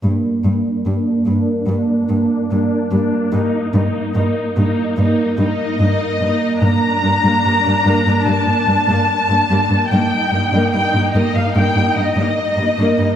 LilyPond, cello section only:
\new Staff \with { instrumentName = "Cello section" } { \clef bass \time 4/4 \key g \minor \tempo 4 = 73 g,8 g,8 g,8 g,8 g,8 g,8 g,8 g,8 | g,8 g,8 g,8 g,8 g,8 g,8 g,8 g,8 | g,16 r16 g,16 g,16 g,16 g,16 g,16 g,16 g,16 g,16 g,16 g,16 r16 g,16 g,16 g,16 | g,16 r16 g,16 g,16 g,16 g,16 g,16 g,16 g,16 g,16 g,16 g,16 r16 g,16 g,16 g,16 | }